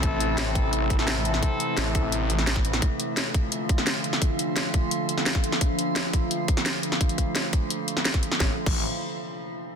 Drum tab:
CC |----------------|----------------|----------------|----------------|
HH |x-x-x-x-x-x-x-x-|x-x-x-x-x-x-x-x-|x-x-x-x-x-x-x-x-|x-x-x-x-x-x-x-x-|
SD |----o------oo--o|----o------ooo-o|----o------oo--o|----o------ooo-o|
BD |o-----o---o-----|o-----o------o--|o-----o---o-----|o-----o------o--|

CC |----------------|----------------|---x------------|
HH |x-x-x-x-x-x-x-x-|xxx-x-x-x-x-xxx-|----------------|
SD |----o------oo--o|----o------ooo-o|o---------------|
BD |o-----o---o-----|o-o---o------o--|o--o------------|